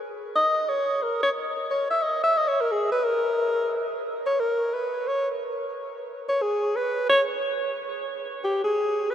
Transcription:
0.36 0.71 D#5 loud
0.69 1.04 C#5 medium
1.03 1.22 A#4 medium
1.23 1.29 C#5 medium
1.70 1.89 C#5 medium
1.91 2.04 E5 loud
2.03 2.23 D#5 medium
2.24 2.39 E5 loud
2.38 2.50 D#5 loud
2.48 2.62 C#5 medium
2.61 2.73 A#4 medium
2.72 2.92 G#4 medium
2.92 3.06 B4 medium
3.05 4.04 A#4 medium
4.26 4.42 C#5 medium
4.40 4.76 A#4 medium
4.74 5.09 B4 medium
5.08 5.28 C#5 medium
6.29 6.44 C#5 medium
6.42 6.77 G#4 medium
6.76 7.08 B4 medium
7.09 7.22 C#5 loud
8.44 8.63 G4 medium
8.64 9.12 G#4 medium
9.11 9.15 B4 medium

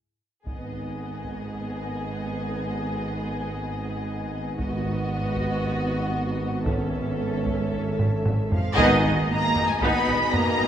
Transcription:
0.46 4.55 G#1 soft
0.46 4.56 G#2 soft
0.46 4.56 B3 soft
0.46 4.56 D#4 soft
0.46 4.56 G#4 soft
0.46 4.56 D#5 soft
0.46 taiko soft
1.24 taiko soft
4.58 8.54 G#1 medium
4.58 5.32 G#2 medium
4.58 8.48 G#2 medium
4.58 7.68 B3 medium
4.58 6.62 B3 medium
4.58 6.62 D#4 medium
4.58 6.63 F#4 medium
4.58 6.63 D#5 medium
4.58 taiko medium
5.36 taiko soft
6.66 7.43 G#2 medium
6.66 8.48 C#4 soft
6.66 8.54 C#4 soft
6.66 8.53 A4 soft
6.66 8.48 E5 soft
6.66 taiko medium
7.46 taiko medium
7.72 8.51 A4 soft
7.99 taiko low-mid medium
8.26 taiko low-mid medium
8.52 8.77 F3 medium
8.52 8.77 F5 medium
8.52 taiko low medium
8.77 9.02 G#1 medium
8.77 9.52 G#2 medium
8.77 10.68 B2 loud
8.77 9.26 D#3 medium
8.77 9.02 B3 loud
8.77 9.02 D#4 medium
8.77 10.68 D#4 loud
8.77 10.68 G#4 medium
8.77 10.68 D#5 medium
8.77 9.26 D#5 loud
8.77 taiko loud
8.77 impact medium
9.05 9.13 G#1 medium
9.05 9.14 B3 medium
9.05 9.13 D#4 soft
9.29 9.39 G#1 soft
9.29 9.67 A#3 medium
9.29 9.39 B3 soft
9.29 9.69 A#5 loud
9.56 9.65 G#1 medium
9.56 9.65 B3 medium
9.56 9.65 D#4 medium
9.56 taiko low soft
9.69 9.82 G#3 medium
9.69 9.81 G#5 medium
9.80 9.91 G#1 medium
9.80 10.31 B3 medium
9.80 10.06 B3 medium
9.80 10.06 D#4 medium
9.80 10.32 B5 loud
9.80 taiko medium
10.07 10.16 G#1 medium
10.07 10.15 B3 soft
10.07 10.15 D#4 soft
10.32 10.43 G#1 medium
10.32 10.68 A#3 medium
10.32 10.41 B3 medium
10.32 10.68 A#5 loud
10.32 taiko low medium
10.57 10.68 G#1 medium
10.57 10.66 B3 medium
10.57 10.65 D#4 medium

